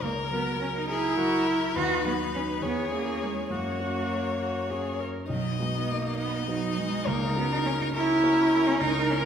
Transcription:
0.02 grand piano C#2, cello A#3, violin A#4, viola A#4
0.31 grand piano F#3 F#4 A#4, cello B3
0.61 cello C#4
0.76 cello D#4
0.88 cello E4, viola G#4, violin A#4
1.17 grand piano F#3 F#4 A#4, viola F#4
1.47 viola E4
1.75 grand piano D#2, viola D#4, cello F#4, violin B4
2.04 grand piano F#3 F#4 B4, cello B3
2.35 cello C#4
2.62 grand piano E2, cello B3, viola G#4, violin C#5
2.91 cello A#3, grand piano C#4 E4 G#4
3.23 cello G#3
3.50 grand piano F#2, cello A#3, viola F#4, violin C#5
3.80 grand piano C#4 F#4
4.40 viola F#4
4.69 grand piano C#4 F#4, viola G#4
4.99 viola A#4
5.29 grand piano B1, cello F#3, viola D#4, violin D#5
5.59 cello G#3, grand piano B3 D#4 F#4
5.75 cello B3
5.90 cello A#3
6.18 cello B3, violin D#5
6.47 cello F#3, grand piano B3 D#4 F#4
6.78 cello G#3
7.06 grand piano C#2, cello A#3, violin A#4
7.35 grand piano A#3 C#4 F#4, cello B3
7.52 cello D#4
7.65 cello C#4
7.81 cello D#4
7.94 viola C#4, cello E4, violin A#4
8.23 grand piano A#3 C#4 F#4
8.67 cello C#4
8.80 grand piano C#2, cello D#4, violin A#4, viola A#4
9.10 grand piano A#3 E4 A#4, cello C#4

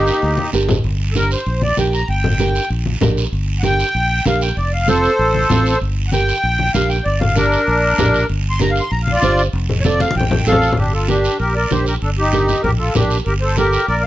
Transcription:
Already playing: trumpet A#3, nylon-string guitar D4 G4 A#4, accordion D#4 G4
0.07 short guiro
0.22 fingered electric bass D2, long guiro
0.38 high conga
0.53 fingered electric bass G1, nylon-string guitar D4 G4 A#4, short guiro
0.69 low conga, short guiro
0.84 fingered electric bass G1, long guiro
1.12 nylon-string guitar D4 G4, accordion A4, high conga, short guiro
1.16 nylon-string guitar A#4, accordion A#4
1.31 accordion C5, short guiro
1.46 fingered electric bass A#1, long guiro
1.62 accordion D5, high conga
1.77 fingered electric bass A#1, nylon-string guitar D4 G4 A#4, accordion G5, high conga, short guiro
1.93 accordion A#5, short guiro
2.08 fingered electric bass G1, accordion G5, long guiro
2.24 low conga
2.39 nylon-string guitar D4 G4 A#4, high conga, short guiro
2.55 short guiro
2.70 fingered electric bass A#1, long guiro
2.86 high conga
3.01 fingered electric bass A#1, nylon-string guitar D4 G4 A#4, high conga, low conga, short guiro
3.17 short guiro
3.32 fingered electric bass G1, long guiro
3.60 nylon-string guitar D4 G4 A#4, accordion F#5, high conga
3.64 accordion G5, short guiro
3.79 short guiro
3.95 fingered electric bass A#1, long guiro
4.25 fingered electric bass A#1, nylon-string guitar D4 G4 A#4, accordion F5, high conga, short guiro
4.41 accordion G5, short guiro
4.57 fingered electric bass F1, accordion D5, long guiro
4.73 accordion F5
4.87 nylon-string guitar C4 F4 A4, accordion A4 C5, high conga, short guiro
5.04 short guiro
5.19 fingered electric bass A1, long guiro
5.35 high conga
5.50 fingered electric bass A1, nylon-string guitar C4 F4 A4, high conga, low conga, short guiro
5.66 short guiro
5.81 fingered electric bass G1, long guiro
6.08 accordion F#5
6.12 nylon-string guitar D4 G4 A#4, accordion G5, high conga, short guiro
6.28 short guiro
6.43 fingered electric bass A#1, long guiro
6.59 high conga
6.74 fingered electric bass A#1, nylon-string guitar D4 G4 A#4, accordion F5, high conga, short guiro
6.89 accordion G5, short guiro
7.05 fingered electric bass G1, accordion D5, long guiro
7.20 accordion F5, low conga
7.35 accordion D4 A#4, nylon-string guitar D4 G4 A#4, high conga, short guiro
7.52 short guiro
7.67 fingered electric bass A#1, long guiro
7.98 fingered electric bass A#1, nylon-string guitar D4 G4 A#4, high conga, low conga, short guiro
8.14 short guiro
8.30 fingered electric bass G1, long guiro
8.50 accordion C6
8.59 nylon-string guitar D4 G4 A#4, accordion A#5, high conga, short guiro
8.71 accordion F5
8.76 short guiro
8.81 accordion C6
8.91 fingered electric bass A#1, accordion A#5, long guiro
9.02 accordion F5
9.07 high conga
9.12 accordion F4 D5
9.22 fingered electric bass G1, nylon-string guitar D4 G4 C5, high conga, short guiro
9.38 short guiro
9.53 fingered electric bass F1, long guiro
9.69 low conga
9.81 nylon-string guitar C4, accordion C#5, short guiro
9.85 nylon-string guitar F4 A4, accordion D5, high conga
10.00 accordion F5, high conga, short guiro
10.11 high conga
10.15 fingered electric bass A1, accordion G5, long guiro
10.20 low conga
10.31 low conga
10.46 fingered electric bass A1, nylon-string guitar C4 F4 A4, accordion A4 F5, short guiro
10.52 low conga
10.62 short guiro
10.73 low conga
10.77 fingered electric bass G1, accordion D4 G4, long guiro
10.93 accordion F4 A4
11.08 nylon-string guitar D4 G4 A#4, accordion D4 G4, high conga, short guiro
11.24 short guiro
11.39 fingered electric bass A#1, accordion G4 A#4, long guiro
11.55 accordion A#4 D5
11.71 fingered electric bass A#1, nylon-string guitar D4 G4 A#4, accordion G4 C5, high conga, short guiro
11.86 accordion G4 A#4, short guiro
12.02 fingered electric bass G1, accordion D4 A4, long guiro
12.18 accordion D#4 G4
12.32 nylon-string guitar D4 G4 A#4, high conga, short guiro
12.48 high conga, short guiro
12.63 fingered electric bass A#1, accordion G4 A#4, low conga, long guiro
12.79 accordion F4 A4
12.95 fingered electric bass A#1, nylon-string guitar D4 G4 A#4, accordion D4 G4, high conga, low conga, short guiro
13.10 short guiro
13.26 fingered electric bass G1, accordion G4 A#4, long guiro
13.41 accordion A4 C5
13.56 nylon-string guitar D4 G4 A4, accordion G4 A#4, high conga, short guiro
13.73 short guiro
13.87 fingered electric bass A#1, accordion A#4 D5, long guiro
14.03 accordion F5

